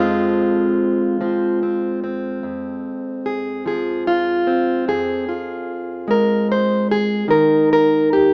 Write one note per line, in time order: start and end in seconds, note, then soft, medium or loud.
0.00 2.42 F2 medium
0.00 1.19 F3 soft
0.00 4.88 G#3 medium
0.00 1.20 C4 soft
0.00 2.44 F4 medium
1.21 2.39 F3 medium
1.21 1.62 C4 soft
1.63 2.02 C4 soft
2.04 4.46 C4 soft
2.43 4.87 F2 medium
3.26 3.67 G#4 soft
3.66 4.83 F3 medium
3.66 4.07 G#4 medium
4.07 4.88 F4 medium
4.47 5.28 C4 soft
4.88 7.30 F2 medium
4.88 6.09 G#4 medium
5.29 7.26 F4 soft
6.08 7.25 G#3 medium
6.08 6.50 A#4 medium
6.52 6.91 C5 medium
6.91 7.30 G#4 loud
7.28 8.34 D#3 medium
7.28 7.71 A#4 medium
7.73 8.12 A#4 medium
8.13 8.34 G4 loud